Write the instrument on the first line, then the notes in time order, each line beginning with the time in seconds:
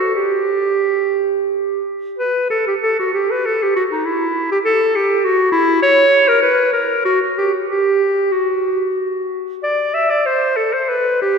clarinet
Already playing: F#4
0.15 G4
2.19 B4
2.50 A4
2.68 G4
2.83 A4
2.99 F#4
3.13 G4
3.31 B4
3.46 A4
3.63 G4
3.76 F#4
3.91 D#4
4.06 E4
4.52 G4
4.65 A4
4.96 G4
5.25 F#4
5.52 E4
5.82 C#5
6.28 A#4
6.42 B4
6.73 A#4
7.05 F#4
7.38 G4
7.69 G4
8.32 F#4
9.63 D5
9.94 E5
10.10 D5
10.26 C5
10.57 A4
10.73 C5
10.89 B4
11.22 G4